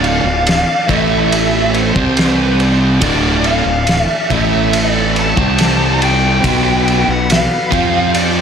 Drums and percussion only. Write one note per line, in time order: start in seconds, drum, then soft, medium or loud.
0.04 ride medium
0.47 snare loud
0.47 ride medium
0.89 kick loud
0.89 ride medium
1.32 ride medium
1.74 ride medium
1.96 kick loud
2.17 snare loud
2.17 ride medium
2.60 ride medium
3.02 kick loud
3.02 ride loud
3.44 ride medium
3.87 snare loud
3.87 ride loud
4.30 kick loud
4.30 ride medium
4.73 ride loud
5.16 ride medium
5.37 kick loud
5.58 snare loud
5.58 ride loud
6.02 ride medium
6.44 kick loud
6.44 ride loud
6.88 ride medium
7.30 snare loud
7.30 ride loud
7.72 kick loud
7.72 ride medium
8.14 ride medium